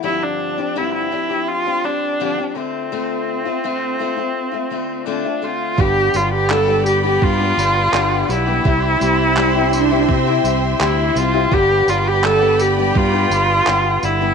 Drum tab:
TB |--------|--------|-x-x-x-x|-x-x-x-x|
CP |--------|--------|--x---x-|--x---x-|
BD |--------|--------|o---o---|o---o---|

TB |-x-x-x-x|
CP |--x---x-|
BD |o---o---|